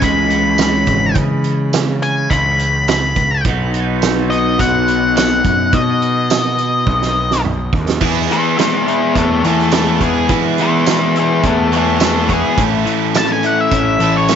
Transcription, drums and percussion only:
0.01 kick, closed hi-hat
0.30 closed hi-hat
0.58 snare, closed hi-hat, tambourine
0.87 kick, closed hi-hat
1.15 kick, closed hi-hat
1.44 closed hi-hat
1.73 snare, closed hi-hat, tambourine
2.02 closed hi-hat
2.31 kick, closed hi-hat
2.59 closed hi-hat
2.88 snare, closed hi-hat, tambourine
3.16 kick, closed hi-hat
3.45 kick, closed hi-hat
3.74 closed hi-hat
4.02 snare, closed hi-hat, tambourine
4.32 closed hi-hat
4.59 kick, closed hi-hat
4.88 closed hi-hat
5.17 snare, closed hi-hat, tambourine
5.45 kick, closed hi-hat
5.73 kick, closed hi-hat
6.02 closed hi-hat
6.30 snare, closed hi-hat, tambourine
6.58 closed hi-hat
6.87 kick
7.02 snare
7.31 snare
7.45 mid tom
7.73 kick
7.89 snare
8.01 kick, crash
8.31 closed hi-hat
8.59 snare, closed hi-hat, tambourine
8.88 closed hi-hat
9.15 kick, closed hi-hat
9.44 closed hi-hat
9.59 snare
9.72 snare, closed hi-hat, tambourine
10.01 kick, closed hi-hat
10.29 kick, closed hi-hat
10.58 closed hi-hat
10.86 snare, closed hi-hat, tambourine
11.16 closed hi-hat
11.43 kick, closed hi-hat
11.73 closed hi-hat
12.00 snare, closed hi-hat, tambourine
12.29 kick, closed hi-hat
12.58 kick, closed hi-hat
12.87 closed hi-hat
13.15 snare, closed hi-hat, tambourine
13.43 closed hi-hat
13.71 kick, closed hi-hat
14.00 closed hi-hat
14.28 snare, closed hi-hat, tambourine

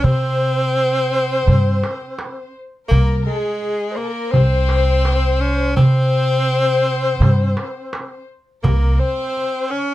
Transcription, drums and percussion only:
0.04 darbuka dum
0.22 darbuka ka
0.58 darbuka ka
0.76 darbuka ka
1.11 darbuka ka
1.47 darbuka dum
1.83 darbuka tek
2.01 darbuka ka
2.19 darbuka tek
2.91 darbuka dum
3.09 darbuka ka
3.44 darbuka ka
3.62 darbuka ka
3.98 darbuka ka
4.34 darbuka dum
4.69 darbuka tek
5.05 darbuka tek
5.77 darbuka dum
6.32 darbuka ka
6.50 darbuka ka
6.86 darbuka ka
7.22 darbuka dum
7.40 darbuka ka
7.57 darbuka tek
7.93 darbuka tek
8.64 darbuka dum
8.84 darbuka ka
9.18 darbuka ka
9.37 darbuka ka
9.72 darbuka ka

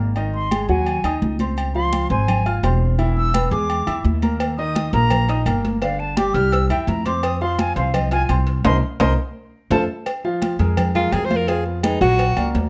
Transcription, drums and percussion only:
0.16 high conga, low agogo
0.34 high conga
0.51 high conga, low agogo
0.69 high conga
0.86 high conga, low agogo
1.04 high conga, low agogo
1.22 high conga
1.39 high conga, low agogo
1.57 high conga, low agogo
1.75 high conga
1.93 high conga, low agogo
2.11 high conga
2.28 high conga, low conga, low agogo
2.46 high conga, low agogo
2.64 high conga, low timbale, low agogo
2.99 high conga, low agogo
3.17 high conga
3.34 high conga, low agogo
3.53 high conga
3.70 high conga, low agogo
3.87 high conga, low agogo
4.05 high conga
4.22 high conga, low agogo
4.40 cowbell, high conga, low agogo
4.58 high conga
4.75 cowbell, high conga, low agogo
4.93 cowbell, high conga
5.10 cowbell, high conga, low conga, low agogo
5.29 cowbell, high conga, low agogo
5.46 cowbell, high conga, low agogo
5.65 cowbell, high conga
5.82 cowbell, high conga, low agogo
6.00 high conga
6.17 cowbell, high conga, low agogo
6.35 cowbell, high conga
6.52 cowbell, high conga, low agogo
6.70 high conga, low agogo
6.88 cowbell, high conga
7.06 cowbell, high conga, low agogo
7.23 cowbell, high conga, low agogo
7.41 high conga
7.59 cowbell, high conga, low agogo
7.76 cowbell, high conga
7.94 cowbell, high conga, low conga, low agogo
8.11 cowbell, high conga, low agogo
8.29 cowbell, high conga, low agogo
8.47 cowbell
8.64 cowbell, high conga, high timbale
9.00 cowbell, high conga, high timbale
9.71 cowbell, high conga, high timbale
10.06 cowbell, high conga, low agogo
10.24 high conga
10.42 cowbell, high conga, low agogo
10.60 cowbell, high conga
10.77 cowbell, high conga, low conga, low agogo
10.95 cowbell, high conga, low conga, low agogo
11.12 cowbell, low timbale, low agogo
11.30 cowbell, high conga
11.48 cowbell, high conga, low agogo
11.66 high conga
11.83 cowbell, high conga, low agogo
12.01 cowbell, high conga
12.19 cowbell, high conga, low agogo
12.37 high conga, low agogo
12.55 cowbell, high conga, low timbale

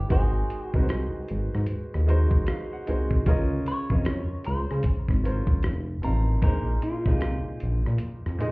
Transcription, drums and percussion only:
0.10 kick, closed hi-hat
0.50 closed hi-hat
0.74 kick
0.89 cross-stick, closed hi-hat
1.28 closed hi-hat
1.55 cross-stick
1.66 closed hi-hat
1.94 cross-stick
2.09 closed hi-hat
2.31 kick
2.47 cross-stick, closed hi-hat
2.87 closed hi-hat
3.11 kick
3.26 kick, closed hi-hat
3.66 closed hi-hat
3.90 kick
4.05 cross-stick, closed hi-hat
4.44 closed hi-hat
4.71 cross-stick
4.83 kick, closed hi-hat
5.08 kick, cross-stick
5.25 closed hi-hat
5.47 kick
5.63 cross-stick, closed hi-hat
6.03 closed hi-hat
6.42 kick, closed hi-hat
6.82 closed hi-hat
7.06 kick, cross-stick
7.21 cross-stick, closed hi-hat
7.60 closed hi-hat
7.86 cross-stick
7.98 closed hi-hat
8.26 cross-stick
8.40 closed hi-hat

